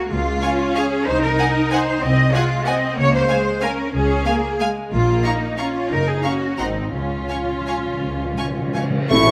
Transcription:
0.10 double bass section C#2, viola section G#3, cello section F4
0.42 viola section C#4, violin section F5 G#5 C#6
0.75 cello section G#4, violin section F5 G#5 C#6
1.06 double bass section C2, viola section D#4, cello section C5
1.22 cello section A#4
1.38 violin section F#5 G#5
1.72 cello section C5, violin section F#5 G#5
2.02 double bass section C2, viola section C4, cello section D#5
2.34 viola section G#3, cello section F4, violin section F#5 G#5
2.66 viola section C4, cello section D#5, violin section F#5 G#5
2.97 double bass section C#2, viola section A#3, cello section C#5
3.13 cello section C5
3.29 viola section G#3, violin section F5 G#5
3.62 viola section C#4, cello section A#4, violin section F5 G#5
3.94 double bass section C#2, viola section C#4, cello section G#4
4.26 viola section A#3, violin section F5 G#5
4.60 viola section G#3, violin section F5 G#5
4.92 double bass section A#1, viola section A#3, cello section F4
5.23 cello section D#4, violin section F5 A#5 C#6
5.58 viola section C#4, cello section F4, violin section F5 A#5 C#6
5.91 double bass section F#1, viola section D#4, cello section A#4
6.07 cello section G#4
6.23 viola section C#4, cello section F#4, violin section F5 A#5 C#6
6.58 double bass section G#1, viola section C4, cello section D#4, violin section F#5 A#5 C6
6.93 double bass section C#2, timpani C#3, cello section C#4, viola section F4
7.02 timpani C#3
7.10 timpani C#3
7.19 timpani C#3
7.27 timpani C#3, violin section F5 G#5 C#6
7.36 timpani C#3
7.44 timpani C#3
7.52 timpani C#3
7.61 timpani C#3
7.67 timpani C#3, violin section F5 G#5 C#6
7.77 timpani C#3
7.86 timpani C#3
7.93 timpani C#3
8.01 double bass section C#2, timpani C#3
8.09 timpani C#3
8.16 timpani C#3
8.25 timpani C#3
8.33 timpani C#3
8.38 timpani C#3, violin section F5 G#5 C#6
8.50 timpani C#3
8.58 timpani C#3
8.67 timpani C#3
8.74 timpani C#3, violin section F5 G#5 C#6
8.82 timpani C#3
8.90 timpani C#3
8.98 timpani C#3
9.10 double bass section A1, cello section A2, bassoon A3, clarinet E4, flute section E5, violin section C#6, tam-tam

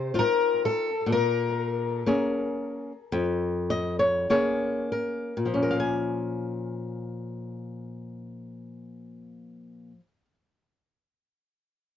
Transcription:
Already playing: nylon-string guitar C3, twelve-string acoustic guitar C5
0.14 nylon-string guitar C4 D#4 F4
0.19 twelve-string acoustic guitar A#4
0.65 twelve-string acoustic guitar A4
1.06 nylon-string guitar A#2
1.12 twelve-string acoustic guitar A#4
2.06 nylon-string guitar A#3 C#4 G#4
3.12 nylon-string guitar F2
3.70 nylon-string guitar D#5
3.99 nylon-string guitar C#5
4.30 nylon-string guitar A#3 C#4 G#4 C#5
4.92 nylon-string guitar A#4
5.37 nylon-string guitar A#2
5.46 nylon-string guitar F3
5.54 nylon-string guitar C#4
5.63 nylon-string guitar A#4
5.71 nylon-string guitar F5
5.80 nylon-string guitar G#5

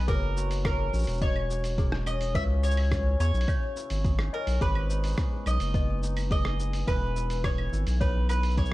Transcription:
Already playing: hammered dulcimer E3 B3 E4 G#4
0.08 analog synth bass F#1, hammered dulcimer F#3, toy piano G#4, mandolin A#4, kick, open hi-hat, cabasa
0.37 hammered dulcimer F#4, cabasa
0.51 open hi-hat, cabasa
0.65 hammered dulcimer C#4, mandolin A#4, kick, cross-stick, open hi-hat, cabasa, claves
0.93 analog synth bass A#1, hammered dulcimer F#4, cabasa
0.98 cabasa
1.03 cabasa
1.07 analog synth bass E1, open hi-hat, cabasa
1.13 cabasa
1.17 cabasa
1.21 hammered dulcimer C#4, mandolin C#5, toy piano D#5, kick, open hi-hat, cabasa
1.36 claves
1.49 hammered dulcimer F#4, cabasa
1.64 open hi-hat, cabasa
1.78 toy piano G#4, hammered dulcimer A#4, kick, open hi-hat, cabasa
1.92 cross-stick
2.06 hammered dulcimer C#4, mandolin D#5, cabasa, claves
2.21 open hi-hat, cabasa
2.35 analog synth bass C#2, hammered dulcimer C#3, toy piano B4, mandolin E5, kick, open hi-hat, cabasa
2.63 hammered dulcimer E4, mandolin C#5, cabasa
2.71 cabasa
2.77 open hi-hat, claves
2.91 hammered dulcimer C#4, kick, cross-stick, open hi-hat, cabasa
3.20 analog synth bass E2, hammered dulcimer E4, mandolin C#5, cabasa
3.34 analog synth bass B1, cabasa
3.41 open hi-hat
3.48 hammered dulcimer C#4, toy piano C#5, kick, open hi-hat, cabasa, claves
3.76 hammered dulcimer E4, cabasa
3.90 analog synth bass G#1, open hi-hat, cabasa
4.04 hammered dulcimer G#4, kick, open hi-hat, cabasa
4.19 cross-stick, claves
4.33 hammered dulcimer C#4, mandolin A#4, toy piano D#5
4.47 analog synth bass B1, open hi-hat, cabasa
4.61 analog synth bass G#1, hammered dulcimer G#2, toy piano G#4, mandolin B4, kick, open hi-hat, cabasa
4.75 claves
4.89 hammered dulcimer D#4, cabasa
5.04 open hi-hat, cabasa
5.07 cabasa
5.09 cabasa
5.11 cabasa
5.14 cabasa
5.16 hammered dulcimer B3, kick, cross-stick, open hi-hat, cabasa
5.18 cabasa
5.46 analog synth bass B1, hammered dulcimer D#4, mandolin D#5, cabasa, claves
5.60 analog synth bass F#1, open hi-hat, cabasa
5.74 hammered dulcimer B3, toy piano D#5, kick, open hi-hat, cabasa
6.03 hammered dulcimer D#4, cabasa
6.17 open hi-hat, cabasa, claves
6.31 toy piano G#4, hammered dulcimer G#4, mandolin D#5, kick, open hi-hat, cabasa
6.45 cross-stick
6.59 hammered dulcimer B3, cabasa
6.73 open hi-hat, cabasa
6.87 analog synth bass E1, hammered dulcimer E3, mandolin B4, toy piano B4, kick, open hi-hat, cabasa, claves
7.16 hammered dulcimer E4, cabasa
7.30 open hi-hat, cabasa
7.44 hammered dulcimer B3, mandolin C#5, kick, cross-stick, open hi-hat, cabasa
7.58 claves
7.72 analog synth bass G#1, hammered dulcimer E4, cabasa
7.87 analog synth bass B1, open hi-hat, cabasa
8.01 hammered dulcimer B3, mandolin B4, toy piano C#5, kick, open hi-hat, cabasa
8.29 hammered dulcimer E4, mandolin B4, cabasa, claves
8.43 open hi-hat, cabasa
8.51 cabasa
8.57 hammered dulcimer G#4, mandolin C#5, kick, open hi-hat, cabasa
8.65 cabasa

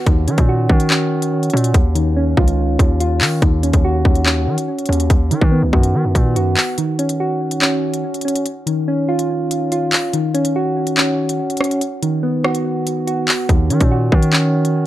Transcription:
0.06 808-style bass D#2, synth keys D#3, kick, closed hi-hat
0.28 808-style bass D#3, synth keys C#4, closed hi-hat
0.38 808-style bass A#2, kick, closed hi-hat
0.49 synth keys F#4
0.69 808-style bass D#3, kick
0.80 closed hi-hat
0.90 synth keys C#4, clap
1.22 closed hi-hat
1.43 closed hi-hat
1.50 808-style bass A#2, synth keys C#4, closed hi-hat
1.57 closed hi-hat
1.64 closed hi-hat
1.74 808-style bass D#2, kick, closed hi-hat
1.95 synth keys D#3, closed hi-hat
2.16 synth keys C#4
2.37 808-style bass C#2, synth keys F4, kick
2.48 closed hi-hat
2.79 808-style bass D#2, kick, closed hi-hat
3.00 synth keys F4, closed hi-hat
3.21 808-style bass D#3, clap, open hi-hat
3.42 808-style bass D#2, synth keys D#3, kick, closed hi-hat
3.63 synth keys C#4, closed hi-hat
3.73 808-style bass D#2, kick, closed hi-hat
3.84 synth keys F#4
4.05 808-style bass D#2, kick
4.15 closed hi-hat
4.26 synth keys C#4, clap
4.47 808-style bass D#3
4.58 closed hi-hat
4.79 closed hi-hat
4.86 808-style bass D#2, synth keys C#4, closed hi-hat
4.93 closed hi-hat
5.00 closed hi-hat
5.10 808-style bass D#2, kick, closed hi-hat
5.31 808-style bass D#3, synth keys D#3, closed hi-hat
5.41 808-style bass D#3, kick
5.52 synth keys B3
5.63 808-style bass C#2
5.73 808-style bass F#2, synth keys F#4, kick
5.83 closed hi-hat
5.94 808-style bass D#3
6.05 808-style bass F#2
6.15 808-style bass A#2, kick, closed hi-hat
6.36 808-style bass F#2, synth keys F#4, closed hi-hat
6.56 clap, open hi-hat
6.78 synth keys D#3, closed hi-hat
6.99 synth keys C#4, closed hi-hat
7.09 closed hi-hat
7.20 synth keys F#4
7.51 closed hi-hat
7.62 synth keys C#4, clap
7.94 closed hi-hat
8.14 closed hi-hat
8.21 synth keys C#4, closed hi-hat
8.28 closed hi-hat
8.36 closed hi-hat
8.46 closed hi-hat
8.66 synth keys D#3, closed hi-hat
8.88 synth keys C#4
9.09 synth keys F4
9.19 closed hi-hat
9.51 closed hi-hat
9.72 synth keys F4, closed hi-hat
9.92 clap, open hi-hat
10.13 synth keys D#3, closed hi-hat
10.34 synth keys C#4, closed hi-hat
10.45 closed hi-hat
10.56 synth keys F#4
10.87 closed hi-hat
10.97 synth keys C#4, clap
11.29 closed hi-hat
11.50 closed hi-hat
11.57 synth keys C#4, cross-stick, closed hi-hat
11.64 closed hi-hat
11.71 closed hi-hat
11.81 closed hi-hat
12.03 synth keys D#3, closed hi-hat
12.23 synth keys B3
12.44 synth keys F#4, cross-stick
12.55 closed hi-hat
12.87 closed hi-hat
13.07 synth keys F#4, closed hi-hat
13.28 clap, open hi-hat
13.49 808-style bass D#2, synth keys D#3, kick, closed hi-hat
13.70 808-style bass D#3, synth keys C#4, closed hi-hat
13.80 808-style bass A#2, kick, closed hi-hat
13.91 synth keys F#4
14.12 808-style bass D#3, kick
14.23 closed hi-hat
14.33 synth keys C#4, clap
14.65 closed hi-hat

